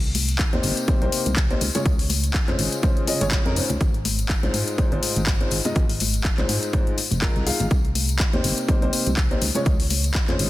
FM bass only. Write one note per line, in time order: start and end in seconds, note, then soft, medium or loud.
0.00 0.46 C2 loud
0.53 0.60 D#2 medium
0.64 0.73 G1 loud
1.02 1.09 C2 loud
1.26 1.56 C2 medium
1.61 1.70 C#2 medium
1.86 2.41 C#2 loud
2.48 2.55 F2 medium
2.59 2.68 G#1 loud
3.21 3.37 G#1 medium
3.46 3.61 F2 loud
3.70 3.77 C#2 loud
3.81 4.36 G#1 loud
4.43 4.50 C2 medium
4.54 4.63 G#2 loud
4.92 4.99 G#1 loud
5.16 5.46 G#1 medium
5.51 5.61 G#1 medium
5.76 6.31 G#1 loud
6.38 6.45 C2 medium
6.49 6.58 G#2 loud
7.11 7.27 F1 medium
7.36 7.51 C2 loud
7.60 7.67 G#1 loud
7.71 8.26 C2 loud
8.33 8.41 D#2 medium
8.44 8.53 G1 loud
8.82 8.89 C2 loud
9.06 9.36 C2 medium
9.42 9.51 C#2 medium
9.66 10.21 C#2 loud
10.29 10.36 F2 medium
10.39 10.48 G#1 loud